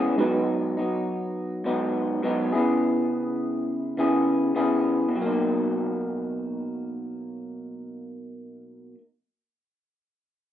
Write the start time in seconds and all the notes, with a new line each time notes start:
Already playing: E3 G#3 B3 C#4 E4 G#4 B4
0.18 G#2 F#3 G#3 B3 D#4 F#4 B4
0.77 F#3 B3 D#4
1.64 G#2 F#3 B3 D#4
2.22 G#2 F#3 B3 D#4
2.52 C#3 B3 E4 G#4
3.97 C#3 B3 E4 G#4
4.55 C#3 B3 E4 G#4
5.09 B2
5.15 F#3
5.21 A#3
5.26 D#4